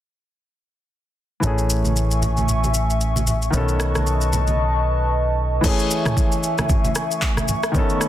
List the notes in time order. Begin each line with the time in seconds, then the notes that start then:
1.40 A1 E3 A3 E5 G#5 C#6, low conga, shaker
1.45 C#4 G#4
1.58 shaker
1.70 shaker
1.85 high conga, shaker
1.96 shaker
2.11 shaker
2.22 low conga, shaker
2.37 high conga, shaker
2.48 low conga, shaker
2.64 high conga, shaker
2.74 shaker
2.90 shaker
3.01 shaker
3.16 high conga, shaker
3.27 low conga, shaker
3.42 shaker
3.50 B1 D#3 B3 B4 D#5 A5 C#6, low conga, shaker
3.55 C#4 A4
3.68 shaker
3.80 cross-stick, shaker
3.95 cross-stick, high conga, shaker
4.07 shaker
4.21 shaker
4.33 low conga, shaker
4.47 high conga, shaker
5.61 E3 A3 E5 G#5 C#6, kick, crash, low conga, shaker
5.65 C#4 G#4
5.79 shaker
5.91 shaker
6.05 cross-stick, mid tom, high conga, shaker
6.17 kick, shaker
6.32 shaker
6.43 shaker
6.58 cross-stick, high conga, shaker
6.69 kick, low conga, shaker
6.85 high conga, shaker
6.95 cross-stick, shaker
7.11 shaker
7.22 kick, clap, shaker
7.37 cross-stick, high conga, shaker
7.48 low conga, shaker
7.63 cross-stick, shaker
7.72 D#3 B3 D#5 B5, kick, low conga, shaker
7.76 C#4 A4
7.90 shaker
8.01 cross-stick, shaker